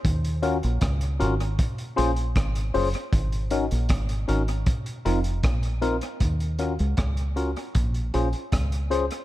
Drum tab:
HH |xxxxxxxxxxxxxxox|xxxxxxxxxxxxxxxx|xxxxxxxxxxxxxxxx|
SD |----r-------r---|----r-------r---|----r-------r---|
BD |o---o---o---o---|o---o---o---o---|o---o---o---o---|